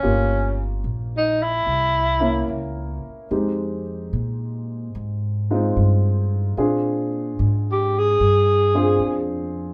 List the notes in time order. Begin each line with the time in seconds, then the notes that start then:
Already playing: C#4
0.03 G1 A#3 C#4 F4 G4
0.84 A#1
1.17 D#4
1.42 E4
1.66 C2
2.20 A#3 C#4 E4 A#4
2.48 C#2
3.06 muted upright bass stroke
3.31 F2 G#3 C4 D#4 G4
4.13 A#2
4.95 G#2
5.50 G#3 C4 D#4 F4
5.77 G2
6.57 A#2 C4 D4 F4 G#4
7.39 G#2
7.71 G4
7.99 G#4
8.20 G2
8.75 C4 D4 F4 G#4
8.99 F2